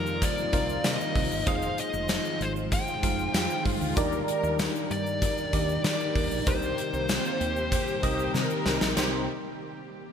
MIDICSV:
0, 0, Header, 1, 8, 480
1, 0, Start_track
1, 0, Key_signature, -3, "minor"
1, 0, Tempo, 625000
1, 1128, Time_signature, 4, 2, 24, 8
1, 7776, End_track
2, 0, Start_track
2, 0, Title_t, "Lead electric guitar"
2, 0, Program_c, 0, 29
2, 0, Note_on_c, 0, 70, 76
2, 179, Note_on_c, 0, 74, 95
2, 180, Note_off_c, 0, 70, 0
2, 658, Note_off_c, 0, 74, 0
2, 661, Note_on_c, 0, 75, 102
2, 1133, Note_off_c, 0, 75, 0
2, 1136, Note_on_c, 0, 77, 115
2, 1355, Note_off_c, 0, 77, 0
2, 1379, Note_on_c, 0, 75, 105
2, 1861, Note_on_c, 0, 72, 100
2, 1868, Note_off_c, 0, 75, 0
2, 1924, Note_off_c, 0, 72, 0
2, 2099, Note_on_c, 0, 79, 106
2, 2783, Note_off_c, 0, 79, 0
2, 3775, Note_on_c, 0, 74, 113
2, 4461, Note_off_c, 0, 74, 0
2, 4495, Note_on_c, 0, 74, 109
2, 4973, Note_on_c, 0, 72, 97
2, 4986, Note_off_c, 0, 74, 0
2, 6380, Note_off_c, 0, 72, 0
2, 7776, End_track
3, 0, Start_track
3, 0, Title_t, "FM electric piano"
3, 0, Program_c, 1, 5
3, 0, Control_c, 1, 64, 127
3, 0, Note_on_c, 1, 48, 79
3, 0, Note_on_c, 1, 63, 91
3, 0, Note_on_c, 1, 65, 84
3, 0, Note_on_c, 1, 70, 83
3, 0, Note_on_c, 1, 72, 80
3, 0, Note_on_c, 1, 74, 94
3, 110, Note_off_c, 1, 63, 0
3, 111, Note_off_c, 1, 65, 0
3, 113, Note_off_c, 1, 70, 0
3, 114, Note_off_c, 1, 72, 0
3, 115, Note_off_c, 1, 74, 0
3, 403, Note_on_c, 1, 63, 77
3, 404, Note_on_c, 1, 65, 70
3, 407, Note_on_c, 1, 70, 70
3, 410, Note_on_c, 1, 72, 68
3, 412, Note_on_c, 1, 77, 84
3, 1084, Note_off_c, 1, 63, 0
3, 1084, Note_off_c, 1, 65, 0
3, 1085, Note_off_c, 1, 70, 0
3, 1087, Note_off_c, 1, 72, 0
3, 1088, Note_off_c, 1, 77, 0
3, 1122, Note_on_c, 1, 63, 75
3, 1124, Note_on_c, 1, 65, 67
3, 1126, Note_on_c, 1, 68, 71
3, 1129, Note_on_c, 1, 72, 68
3, 1131, Note_on_c, 1, 75, 86
3, 1139, Control_c, 1, 64, 0
3, 1142, Note_off_c, 1, 48, 0
3, 1264, Control_c, 1, 64, 127
3, 2029, Note_off_c, 1, 63, 0
3, 2030, Note_off_c, 1, 65, 0
3, 2031, Note_off_c, 1, 68, 0
3, 2033, Note_off_c, 1, 72, 0
3, 2034, Note_off_c, 1, 75, 0
3, 2324, Note_on_c, 1, 63, 80
3, 2327, Note_on_c, 1, 65, 70
3, 2329, Note_on_c, 1, 56, 71
3, 2332, Note_on_c, 1, 72, 73
3, 2333, Note_on_c, 1, 77, 83
3, 3004, Note_off_c, 1, 63, 0
3, 3006, Note_off_c, 1, 56, 0
3, 3006, Note_off_c, 1, 65, 0
3, 3008, Note_off_c, 1, 72, 0
3, 3008, Note_off_c, 1, 77, 0
3, 3043, Note_on_c, 1, 62, 93
3, 3046, Note_on_c, 1, 63, 84
3, 3047, Note_on_c, 1, 51, 76
3, 3048, Note_on_c, 1, 67, 88
3, 3050, Note_on_c, 1, 70, 86
3, 3052, Note_on_c, 1, 74, 100
3, 3060, Control_c, 1, 64, 0
3, 3210, Control_c, 1, 64, 127
3, 3737, Note_off_c, 1, 51, 0
3, 3950, Note_off_c, 1, 62, 0
3, 3951, Note_off_c, 1, 63, 0
3, 3952, Note_off_c, 1, 67, 0
3, 3953, Note_off_c, 1, 70, 0
3, 3954, Note_off_c, 1, 74, 0
3, 4244, Note_on_c, 1, 62, 78
3, 4246, Note_on_c, 1, 63, 71
3, 4249, Note_on_c, 1, 67, 70
3, 4251, Note_on_c, 1, 70, 70
3, 4254, Note_on_c, 1, 74, 88
3, 4924, Note_off_c, 1, 62, 0
3, 4925, Note_off_c, 1, 63, 0
3, 4926, Note_off_c, 1, 67, 0
3, 4928, Note_off_c, 1, 70, 0
3, 4929, Note_off_c, 1, 74, 0
3, 4963, Note_on_c, 1, 60, 75
3, 4965, Note_on_c, 1, 63, 65
3, 4967, Note_on_c, 1, 67, 70
3, 4968, Note_on_c, 1, 48, 66
3, 4970, Note_on_c, 1, 70, 65
3, 4972, Note_on_c, 1, 72, 86
3, 4979, Control_c, 1, 64, 0
3, 5130, Control_c, 1, 64, 127
3, 5657, Note_off_c, 1, 48, 0
3, 5870, Note_off_c, 1, 60, 0
3, 5871, Note_off_c, 1, 63, 0
3, 5872, Note_off_c, 1, 67, 0
3, 5873, Note_off_c, 1, 70, 0
3, 5874, Note_off_c, 1, 72, 0
3, 6162, Note_on_c, 1, 60, 88
3, 6165, Note_on_c, 1, 63, 85
3, 6167, Note_on_c, 1, 67, 83
3, 6169, Note_on_c, 1, 70, 83
3, 6171, Note_on_c, 1, 75, 100
3, 6843, Note_off_c, 1, 60, 0
3, 6844, Note_off_c, 1, 63, 0
3, 6845, Note_off_c, 1, 67, 0
3, 6847, Note_off_c, 1, 70, 0
3, 6847, Note_off_c, 1, 75, 0
3, 6888, Note_on_c, 1, 36, 84
3, 6888, Note_on_c, 1, 63, 85
3, 6888, Note_on_c, 1, 67, 72
3, 6888, Note_on_c, 1, 70, 77
3, 6888, Note_on_c, 1, 72, 92
3, 6898, Control_c, 1, 64, 0
3, 7111, Note_off_c, 1, 36, 0
3, 7111, Note_off_c, 1, 63, 0
3, 7111, Note_off_c, 1, 67, 0
3, 7111, Note_off_c, 1, 70, 0
3, 7111, Note_off_c, 1, 72, 0
3, 7776, End_track
4, 0, Start_track
4, 0, Title_t, "Violin section"
4, 0, Program_c, 2, 48
4, 2567, Note_on_c, 2, 67, 97
4, 2675, Note_off_c, 2, 67, 0
4, 2808, Note_on_c, 2, 65, 95
4, 3031, Note_off_c, 2, 65, 0
4, 3048, Note_on_c, 2, 70, 113
4, 3279, Note_off_c, 2, 70, 0
4, 3288, Note_on_c, 2, 70, 105
4, 3623, Note_off_c, 2, 70, 0
4, 5447, Note_on_c, 2, 65, 85
4, 5671, Note_off_c, 2, 65, 0
4, 5685, Note_on_c, 2, 67, 92
4, 5917, Note_off_c, 2, 67, 0
4, 5926, Note_on_c, 2, 67, 98
4, 6150, Note_off_c, 2, 67, 0
4, 6167, Note_on_c, 2, 67, 98
4, 6391, Note_off_c, 2, 67, 0
4, 6406, Note_on_c, 2, 70, 115
4, 6887, Note_off_c, 2, 70, 0
4, 6887, Note_on_c, 2, 67, 80
4, 7111, Note_off_c, 2, 67, 0
4, 7776, End_track
5, 0, Start_track
5, 0, Title_t, "Analog polysynth"
5, 0, Program_c, 3, 90
5, 0, Note_on_c, 3, 55, 81
5, 0, Note_on_c, 3, 65, 78
5, 0, Note_on_c, 3, 70, 90
5, 1097, Note_off_c, 3, 65, 0
5, 1097, Note_off_c, 3, 70, 0
5, 1098, Note_off_c, 3, 55, 0
5, 1129, Note_on_c, 3, 56, 80
5, 1129, Note_on_c, 3, 65, 84
5, 1129, Note_on_c, 3, 72, 85
5, 3018, Note_off_c, 3, 56, 0
5, 3018, Note_off_c, 3, 65, 0
5, 3018, Note_off_c, 3, 72, 0
5, 3049, Note_on_c, 3, 55, 82
5, 3049, Note_on_c, 3, 63, 82
5, 3049, Note_on_c, 3, 70, 92
5, 4938, Note_off_c, 3, 55, 0
5, 4938, Note_off_c, 3, 63, 0
5, 4938, Note_off_c, 3, 70, 0
5, 4968, Note_on_c, 3, 60, 76
5, 4968, Note_on_c, 3, 67, 87
5, 4969, Note_on_c, 3, 51, 83
5, 6857, Note_off_c, 3, 60, 0
5, 6857, Note_off_c, 3, 67, 0
5, 6858, Note_off_c, 3, 51, 0
5, 6887, Note_on_c, 3, 51, 88
5, 6887, Note_on_c, 3, 60, 93
5, 6887, Note_on_c, 3, 67, 102
5, 7110, Note_off_c, 3, 51, 0
5, 7110, Note_off_c, 3, 67, 0
5, 7111, Note_off_c, 3, 60, 0
5, 7776, End_track
6, 0, Start_track
6, 0, Title_t, "Ambient pad"
6, 0, Program_c, 4, 92
6, 0, Note_on_c, 4, 51, 84
6, 0, Note_on_c, 4, 53, 78
6, 0, Note_on_c, 4, 58, 80
6, 0, Note_on_c, 4, 60, 77
6, 0, Note_on_c, 4, 63, 97
6, 1109, Note_off_c, 4, 51, 0
6, 1109, Note_off_c, 4, 63, 0
6, 1110, Note_off_c, 4, 58, 0
6, 1128, Note_on_c, 4, 51, 85
6, 1129, Note_on_c, 4, 56, 77
6, 1129, Note_on_c, 4, 65, 94
6, 3017, Note_off_c, 4, 60, 0
6, 3018, Note_off_c, 4, 53, 0
6, 3029, Note_off_c, 4, 56, 0
6, 3029, Note_off_c, 4, 65, 0
6, 3046, Note_on_c, 4, 74, 76
6, 3047, Note_on_c, 4, 55, 78
6, 3047, Note_on_c, 4, 58, 79
6, 3047, Note_on_c, 4, 67, 91
6, 4948, Note_off_c, 4, 55, 0
6, 4948, Note_off_c, 4, 74, 0
6, 4969, Note_on_c, 4, 55, 82
6, 4970, Note_on_c, 4, 60, 80
6, 6857, Note_off_c, 4, 51, 0
6, 6857, Note_off_c, 4, 58, 0
6, 6857, Note_off_c, 4, 67, 0
6, 6869, Note_off_c, 4, 55, 0
6, 6870, Note_off_c, 4, 60, 0
6, 7776, End_track
7, 0, Start_track
7, 0, Title_t, "Fretless electric bass"
7, 0, Program_c, 5, 35
7, 0, Note_on_c, 5, 41, 97
7, 200, Note_off_c, 5, 41, 0
7, 409, Note_on_c, 5, 36, 97
7, 588, Note_off_c, 5, 36, 0
7, 649, Note_on_c, 5, 48, 106
7, 739, Note_off_c, 5, 48, 0
7, 887, Note_on_c, 5, 36, 101
7, 977, Note_off_c, 5, 36, 0
7, 1009, Note_on_c, 5, 31, 99
7, 1098, Note_off_c, 5, 31, 0
7, 1128, Note_on_c, 5, 29, 101
7, 1308, Note_off_c, 5, 29, 0
7, 1486, Note_on_c, 5, 29, 102
7, 1666, Note_off_c, 5, 29, 0
7, 1846, Note_on_c, 5, 32, 96
7, 2117, Note_off_c, 5, 32, 0
7, 2329, Note_on_c, 5, 29, 96
7, 2508, Note_off_c, 5, 29, 0
7, 2567, Note_on_c, 5, 41, 103
7, 2657, Note_off_c, 5, 41, 0
7, 2807, Note_on_c, 5, 31, 104
7, 2898, Note_off_c, 5, 31, 0
7, 2927, Note_on_c, 5, 38, 94
7, 3017, Note_off_c, 5, 38, 0
7, 3049, Note_on_c, 5, 39, 108
7, 3228, Note_off_c, 5, 39, 0
7, 3405, Note_on_c, 5, 39, 94
7, 3586, Note_off_c, 5, 39, 0
7, 3766, Note_on_c, 5, 43, 96
7, 4037, Note_off_c, 5, 43, 0
7, 4249, Note_on_c, 5, 39, 91
7, 4429, Note_off_c, 5, 39, 0
7, 4487, Note_on_c, 5, 51, 104
7, 4577, Note_off_c, 5, 51, 0
7, 4727, Note_on_c, 5, 39, 106
7, 4818, Note_off_c, 5, 39, 0
7, 4847, Note_on_c, 5, 34, 92
7, 4938, Note_off_c, 5, 34, 0
7, 4968, Note_on_c, 5, 36, 114
7, 5148, Note_off_c, 5, 36, 0
7, 5326, Note_on_c, 5, 36, 100
7, 5506, Note_off_c, 5, 36, 0
7, 5688, Note_on_c, 5, 39, 91
7, 5958, Note_off_c, 5, 39, 0
7, 6169, Note_on_c, 5, 36, 90
7, 6349, Note_off_c, 5, 36, 0
7, 6406, Note_on_c, 5, 48, 98
7, 6497, Note_off_c, 5, 48, 0
7, 6649, Note_on_c, 5, 36, 98
7, 6739, Note_off_c, 5, 36, 0
7, 6769, Note_on_c, 5, 34, 89
7, 6858, Note_off_c, 5, 34, 0
7, 6888, Note_on_c, 5, 36, 105
7, 7111, Note_off_c, 5, 36, 0
7, 7776, End_track
8, 0, Start_track
8, 0, Title_t, "Drums"
8, 50, Note_on_c, 9, 82, 54
8, 127, Note_off_c, 9, 82, 0
8, 168, Note_on_c, 9, 36, 95
8, 168, Note_on_c, 9, 42, 93
8, 171, Note_on_c, 9, 82, 79
8, 245, Note_off_c, 9, 36, 0
8, 245, Note_off_c, 9, 42, 0
8, 248, Note_off_c, 9, 82, 0
8, 290, Note_on_c, 9, 82, 51
8, 367, Note_off_c, 9, 82, 0
8, 406, Note_on_c, 9, 42, 94
8, 408, Note_on_c, 9, 36, 93
8, 483, Note_off_c, 9, 42, 0
8, 485, Note_off_c, 9, 36, 0
8, 532, Note_on_c, 9, 82, 51
8, 609, Note_off_c, 9, 82, 0
8, 647, Note_on_c, 9, 42, 93
8, 648, Note_on_c, 9, 38, 125
8, 650, Note_on_c, 9, 54, 71
8, 652, Note_on_c, 9, 82, 68
8, 724, Note_off_c, 9, 42, 0
8, 725, Note_off_c, 9, 38, 0
8, 727, Note_off_c, 9, 54, 0
8, 729, Note_off_c, 9, 82, 0
8, 772, Note_on_c, 9, 82, 51
8, 848, Note_off_c, 9, 82, 0
8, 887, Note_on_c, 9, 36, 93
8, 887, Note_on_c, 9, 46, 79
8, 964, Note_off_c, 9, 36, 0
8, 964, Note_off_c, 9, 46, 0
8, 1010, Note_on_c, 9, 82, 56
8, 1087, Note_off_c, 9, 82, 0
8, 1126, Note_on_c, 9, 82, 68
8, 1128, Note_on_c, 9, 36, 127
8, 1128, Note_on_c, 9, 42, 95
8, 1202, Note_off_c, 9, 82, 0
8, 1204, Note_off_c, 9, 42, 0
8, 1205, Note_off_c, 9, 36, 0
8, 1246, Note_on_c, 9, 82, 58
8, 1322, Note_off_c, 9, 82, 0
8, 1368, Note_on_c, 9, 42, 92
8, 1368, Note_on_c, 9, 82, 56
8, 1445, Note_off_c, 9, 42, 0
8, 1445, Note_off_c, 9, 82, 0
8, 1485, Note_on_c, 9, 82, 55
8, 1562, Note_off_c, 9, 82, 0
8, 1601, Note_on_c, 9, 82, 77
8, 1605, Note_on_c, 9, 42, 89
8, 1608, Note_on_c, 9, 38, 123
8, 1609, Note_on_c, 9, 54, 74
8, 1678, Note_off_c, 9, 82, 0
8, 1682, Note_off_c, 9, 42, 0
8, 1685, Note_off_c, 9, 38, 0
8, 1686, Note_off_c, 9, 54, 0
8, 1727, Note_on_c, 9, 82, 53
8, 1804, Note_off_c, 9, 82, 0
8, 1849, Note_on_c, 9, 82, 47
8, 1851, Note_on_c, 9, 42, 74
8, 1926, Note_off_c, 9, 82, 0
8, 1927, Note_off_c, 9, 42, 0
8, 1968, Note_on_c, 9, 82, 52
8, 2045, Note_off_c, 9, 82, 0
8, 2088, Note_on_c, 9, 36, 100
8, 2089, Note_on_c, 9, 42, 93
8, 2089, Note_on_c, 9, 82, 76
8, 2165, Note_off_c, 9, 36, 0
8, 2166, Note_off_c, 9, 42, 0
8, 2166, Note_off_c, 9, 82, 0
8, 2207, Note_on_c, 9, 82, 47
8, 2284, Note_off_c, 9, 82, 0
8, 2328, Note_on_c, 9, 42, 94
8, 2329, Note_on_c, 9, 36, 95
8, 2404, Note_off_c, 9, 42, 0
8, 2405, Note_off_c, 9, 36, 0
8, 2450, Note_on_c, 9, 82, 51
8, 2527, Note_off_c, 9, 82, 0
8, 2568, Note_on_c, 9, 42, 93
8, 2569, Note_on_c, 9, 38, 120
8, 2569, Note_on_c, 9, 82, 69
8, 2571, Note_on_c, 9, 54, 71
8, 2644, Note_off_c, 9, 42, 0
8, 2646, Note_off_c, 9, 38, 0
8, 2646, Note_off_c, 9, 82, 0
8, 2648, Note_off_c, 9, 54, 0
8, 2688, Note_on_c, 9, 82, 50
8, 2765, Note_off_c, 9, 82, 0
8, 2807, Note_on_c, 9, 36, 92
8, 2808, Note_on_c, 9, 46, 82
8, 2884, Note_off_c, 9, 36, 0
8, 2885, Note_off_c, 9, 46, 0
8, 2928, Note_on_c, 9, 82, 53
8, 3005, Note_off_c, 9, 82, 0
8, 3045, Note_on_c, 9, 82, 69
8, 3048, Note_on_c, 9, 36, 127
8, 3048, Note_on_c, 9, 42, 93
8, 3122, Note_off_c, 9, 82, 0
8, 3125, Note_off_c, 9, 36, 0
8, 3125, Note_off_c, 9, 42, 0
8, 3168, Note_on_c, 9, 82, 62
8, 3244, Note_off_c, 9, 82, 0
8, 3288, Note_on_c, 9, 42, 89
8, 3290, Note_on_c, 9, 82, 57
8, 3365, Note_off_c, 9, 42, 0
8, 3367, Note_off_c, 9, 82, 0
8, 3409, Note_on_c, 9, 82, 55
8, 3485, Note_off_c, 9, 82, 0
8, 3525, Note_on_c, 9, 82, 77
8, 3526, Note_on_c, 9, 42, 81
8, 3529, Note_on_c, 9, 38, 121
8, 3530, Note_on_c, 9, 54, 69
8, 3602, Note_off_c, 9, 82, 0
8, 3603, Note_off_c, 9, 42, 0
8, 3606, Note_off_c, 9, 38, 0
8, 3607, Note_off_c, 9, 54, 0
8, 3652, Note_on_c, 9, 82, 51
8, 3729, Note_off_c, 9, 82, 0
8, 3769, Note_on_c, 9, 82, 46
8, 3771, Note_on_c, 9, 42, 72
8, 3846, Note_off_c, 9, 82, 0
8, 3848, Note_off_c, 9, 42, 0
8, 3890, Note_on_c, 9, 82, 56
8, 3966, Note_off_c, 9, 82, 0
8, 4008, Note_on_c, 9, 36, 98
8, 4010, Note_on_c, 9, 42, 100
8, 4010, Note_on_c, 9, 82, 76
8, 4085, Note_off_c, 9, 36, 0
8, 4087, Note_off_c, 9, 42, 0
8, 4087, Note_off_c, 9, 82, 0
8, 4129, Note_on_c, 9, 82, 50
8, 4206, Note_off_c, 9, 82, 0
8, 4247, Note_on_c, 9, 42, 88
8, 4249, Note_on_c, 9, 36, 93
8, 4324, Note_off_c, 9, 42, 0
8, 4326, Note_off_c, 9, 36, 0
8, 4370, Note_on_c, 9, 82, 48
8, 4447, Note_off_c, 9, 82, 0
8, 4487, Note_on_c, 9, 42, 93
8, 4489, Note_on_c, 9, 38, 127
8, 4491, Note_on_c, 9, 54, 70
8, 4491, Note_on_c, 9, 82, 65
8, 4564, Note_off_c, 9, 42, 0
8, 4565, Note_off_c, 9, 38, 0
8, 4568, Note_off_c, 9, 54, 0
8, 4568, Note_off_c, 9, 82, 0
8, 4609, Note_on_c, 9, 82, 51
8, 4686, Note_off_c, 9, 82, 0
8, 4727, Note_on_c, 9, 36, 98
8, 4729, Note_on_c, 9, 46, 82
8, 4804, Note_off_c, 9, 36, 0
8, 4805, Note_off_c, 9, 46, 0
8, 4847, Note_on_c, 9, 82, 58
8, 4924, Note_off_c, 9, 82, 0
8, 4965, Note_on_c, 9, 82, 70
8, 4968, Note_on_c, 9, 36, 127
8, 4968, Note_on_c, 9, 42, 97
8, 5042, Note_off_c, 9, 82, 0
8, 5044, Note_off_c, 9, 42, 0
8, 5045, Note_off_c, 9, 36, 0
8, 5086, Note_on_c, 9, 82, 56
8, 5163, Note_off_c, 9, 82, 0
8, 5207, Note_on_c, 9, 42, 90
8, 5209, Note_on_c, 9, 82, 55
8, 5284, Note_off_c, 9, 42, 0
8, 5286, Note_off_c, 9, 82, 0
8, 5328, Note_on_c, 9, 82, 54
8, 5405, Note_off_c, 9, 82, 0
8, 5443, Note_on_c, 9, 82, 77
8, 5446, Note_on_c, 9, 42, 83
8, 5448, Note_on_c, 9, 38, 123
8, 5449, Note_on_c, 9, 54, 73
8, 5519, Note_off_c, 9, 82, 0
8, 5523, Note_off_c, 9, 42, 0
8, 5525, Note_off_c, 9, 38, 0
8, 5526, Note_off_c, 9, 54, 0
8, 5569, Note_on_c, 9, 82, 52
8, 5645, Note_off_c, 9, 82, 0
8, 5690, Note_on_c, 9, 42, 72
8, 5690, Note_on_c, 9, 82, 48
8, 5767, Note_off_c, 9, 42, 0
8, 5767, Note_off_c, 9, 82, 0
8, 5809, Note_on_c, 9, 82, 53
8, 5886, Note_off_c, 9, 82, 0
8, 5928, Note_on_c, 9, 36, 95
8, 5930, Note_on_c, 9, 42, 93
8, 5931, Note_on_c, 9, 82, 74
8, 6005, Note_off_c, 9, 36, 0
8, 6007, Note_off_c, 9, 42, 0
8, 6007, Note_off_c, 9, 82, 0
8, 6049, Note_on_c, 9, 82, 49
8, 6126, Note_off_c, 9, 82, 0
8, 6168, Note_on_c, 9, 42, 89
8, 6169, Note_on_c, 9, 36, 86
8, 6245, Note_off_c, 9, 42, 0
8, 6246, Note_off_c, 9, 36, 0
8, 6290, Note_on_c, 9, 82, 49
8, 6367, Note_off_c, 9, 82, 0
8, 6408, Note_on_c, 9, 38, 69
8, 6412, Note_on_c, 9, 82, 65
8, 6485, Note_off_c, 9, 38, 0
8, 6489, Note_off_c, 9, 82, 0
8, 6529, Note_on_c, 9, 82, 52
8, 6606, Note_off_c, 9, 82, 0
8, 6648, Note_on_c, 9, 38, 103
8, 6725, Note_off_c, 9, 38, 0
8, 6768, Note_on_c, 9, 38, 103
8, 6769, Note_on_c, 9, 82, 55
8, 6845, Note_off_c, 9, 38, 0
8, 6845, Note_off_c, 9, 82, 0
8, 6888, Note_on_c, 9, 38, 110
8, 6888, Note_on_c, 9, 49, 88
8, 6890, Note_on_c, 9, 82, 89
8, 6965, Note_off_c, 9, 38, 0
8, 6965, Note_off_c, 9, 49, 0
8, 6966, Note_off_c, 9, 82, 0
8, 7776, End_track
0, 0, End_of_file